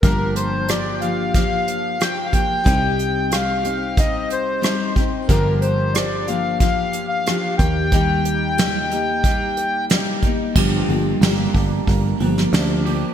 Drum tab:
CC |----------------|----------------|----------------|----------------|
HH |x-x-x-x-x-x-x-x-|x-x-x-x-x-x-x-x-|x-x-x-x-x-x-x-x-|x-x-x-x-x-x-x-x-|
SD |----r-------r---|----r-------r---|----r-------r---|----o-------o---|
BD |o-------o-----o-|o-------o-----o-|o-------o-----o-|o-------o-----o-|

CC |x---------------|
HH |--o-o-o-o-o-o-o-|
SD |----o------oo---|
BD |o-----o-o-------|